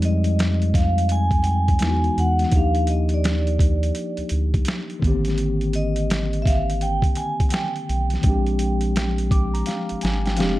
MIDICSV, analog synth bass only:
0, 0, Header, 1, 2, 480
1, 0, Start_track
1, 0, Tempo, 714286
1, 1697, Time_signature, 4, 2, 24, 8
1, 7119, End_track
2, 0, Start_track
2, 0, Title_t, "Analog synth bass"
2, 0, Program_c, 0, 38
2, 0, Note_on_c, 0, 41, 104
2, 1193, Note_off_c, 0, 41, 0
2, 1225, Note_on_c, 0, 40, 101
2, 1413, Note_off_c, 0, 40, 0
2, 1463, Note_on_c, 0, 40, 101
2, 1652, Note_off_c, 0, 40, 0
2, 1699, Note_on_c, 0, 39, 103
2, 2631, Note_off_c, 0, 39, 0
2, 2809, Note_on_c, 0, 38, 41
2, 2845, Note_off_c, 0, 38, 0
2, 2900, Note_on_c, 0, 38, 89
2, 3090, Note_off_c, 0, 38, 0
2, 3381, Note_on_c, 0, 32, 90
2, 4718, Note_off_c, 0, 32, 0
2, 5306, Note_on_c, 0, 35, 100
2, 5494, Note_off_c, 0, 35, 0
2, 5541, Note_on_c, 0, 34, 99
2, 6472, Note_off_c, 0, 34, 0
2, 6662, Note_on_c, 0, 32, 47
2, 6694, Note_off_c, 0, 32, 0
2, 6747, Note_on_c, 0, 32, 89
2, 6989, Note_on_c, 0, 29, 96
2, 6999, Note_off_c, 0, 32, 0
2, 7119, Note_off_c, 0, 29, 0
2, 7119, End_track
0, 0, End_of_file